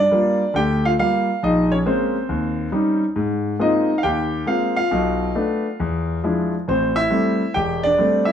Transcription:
Already playing: D5
0.00 D4
0.11 G3 A#3 F4
0.54 D2 D3 G4 G5
0.85 F4 F5
0.99 G3 A#3 F4 F5
1.43 A#1 D#4 D#5
1.72 C#4 C#5
1.86 G#3 A#3 C4 C#4 C5
2.29 D#2
2.72 G3 C#4 D#4
3.16 G#2
3.59 G#3 A#3 C4 D#4 F4 D#5
3.98 F5
4.03 D#2 G4 G5
4.46 G#3 A#3 C4 F4 F5
4.76 F4 F5
4.91 B1 B2
5.35 A3 B3 D4
5.80 E2
6.23 F3 G#3 D4 E4
6.68 A1 C4 C5
6.96 E4 E5
7.10 G3 A3 C4
7.54 E1 G4 G5
7.83 D4 D5
7.98 G3 A3 C4
8.25 E4 E5

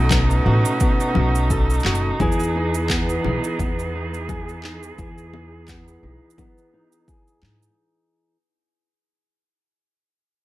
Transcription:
Already playing: B1 B2 A3 B3 C#4 D#4 F#4 A4
0.11 B3, kick, clap, low conga, cabasa
0.30 cabasa
0.46 A1 F#4
0.65 cabasa
0.80 B3, kick, cabasa
1.00 cabasa
1.15 B1 F#4, low conga
1.35 cabasa
1.50 A4, kick, cabasa
1.70 cabasa
1.73 cabasa
1.80 cabasa
1.85 F#1 F#4, clap
1.95 cabasa
2.20 E2 E3 B3 G#4, kick, low conga, cabasa
2.32 cabasa
2.40 cabasa
2.43 cabasa
2.56 D#4
2.74 cabasa
2.90 B3, kick, clap, cabasa
3.09 cabasa
3.24 B1 D#4, low conga
3.44 cabasa
3.59 E2 B3, kick, cabasa
3.79 cabasa
3.95 D#4
4.14 cabasa
4.29 G#4, kick, low conga, cabasa
4.49 cabasa
4.64 D#4, clap
4.83 cabasa
4.98 E2 E3 G#4, kick, cabasa
5.18 cabasa
5.34 D#4, low conga
5.68 B3, kick, clap, cabasa
5.88 cabasa
6.03 B1 D#4
6.30 cabasa
6.38 B3, kick, low conga, cabasa
6.58 cabasa
6.74 D#4
6.92 cabasa
7.08 G#4, kick, cabasa
7.28 cabasa
7.43 G#2 D#4, clap, low conga
7.63 cabasa

